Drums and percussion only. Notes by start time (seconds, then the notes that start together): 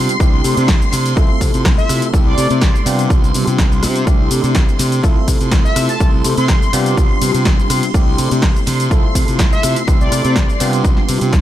0.09 closed hi-hat, shaker
0.20 kick, closed hi-hat, shaker
0.44 open hi-hat, shaker
0.57 closed hi-hat, shaker
0.68 kick, snare, closed hi-hat, shaker
0.82 shaker
0.92 snare, open hi-hat, shaker
1.06 closed hi-hat, shaker
1.17 kick, closed hi-hat, shaker
1.41 kick, open hi-hat, shaker
1.54 closed hi-hat, shaker
1.65 kick, cross-stick, snare, closed hi-hat, shaker
1.79 shaker
1.89 cross-stick, open hi-hat, shaker
2.02 closed hi-hat, shaker
2.14 kick, closed hi-hat, shaker
2.38 open hi-hat, shaker
2.51 closed hi-hat, shaker
2.62 kick, snare, closed hi-hat, shaker
2.75 shaker
2.86 open hi-hat, shaker
2.99 closed hi-hat, shaker
3.10 kick, closed hi-hat, shaker
3.24 shaker
3.34 open hi-hat, shaker
3.47 closed hi-hat, shaker
3.58 kick, cross-stick, snare, closed hi-hat, shaker
3.72 shaker
3.83 cross-stick, open hi-hat, shaker
3.96 closed hi-hat, shaker
4.07 kick, closed hi-hat, shaker
4.31 open hi-hat, ride, shaker
4.44 closed hi-hat, shaker
4.55 kick, snare, closed hi-hat, shaker
4.69 shaker
4.79 snare, open hi-hat, ride, shaker
4.92 closed hi-hat, shaker
5.04 kick, closed hi-hat, shaker
5.28 kick, open hi-hat, ride, shaker
5.41 closed hi-hat, shaker
5.51 kick, cross-stick, snare, closed hi-hat, shaker
5.65 shaker
5.76 cross-stick, open hi-hat, ride, shaker
5.89 closed hi-hat, shaker
6.00 kick, closed hi-hat, shaker
6.24 open hi-hat, ride, shaker
6.38 closed hi-hat, shaker
6.48 kick, snare, closed hi-hat, shaker
6.62 shaker
6.73 open hi-hat, ride, shaker
6.86 closed hi-hat, shaker
6.97 kick, closed hi-hat, shaker
7.22 open hi-hat, ride, shaker
7.35 closed hi-hat, shaker
7.45 kick, cross-stick, snare, closed hi-hat, shaker
7.59 shaker
7.70 cross-stick, open hi-hat, ride, shaker
7.83 closed hi-hat, shaker
7.94 kick, closed hi-hat, shaker
8.18 open hi-hat, ride, shaker
8.31 closed hi-hat, shaker
8.42 kick, snare, closed hi-hat, shaker
8.56 shaker
8.67 snare, open hi-hat, ride, shaker
8.80 closed hi-hat, shaker
8.91 kick, closed hi-hat, shaker
9.15 kick, open hi-hat, ride, shaker
9.28 closed hi-hat, shaker
9.39 kick, cross-stick, snare, closed hi-hat, shaker
9.53 shaker
9.63 cross-stick, open hi-hat, ride, shaker
9.76 closed hi-hat, shaker
9.88 kick, closed hi-hat, shaker
10.01 shaker
10.12 cross-stick, open hi-hat, ride, shaker
10.25 closed hi-hat, shaker
10.36 kick, snare, closed hi-hat, shaker
10.49 shaker
10.60 open hi-hat, ride, shaker
10.73 closed hi-hat, shaker
10.84 kick, closed hi-hat, shaker
10.97 snare
11.09 open hi-hat, ride, shaker
11.21 closed hi-hat, shaker
11.33 kick, snare, closed hi-hat, shaker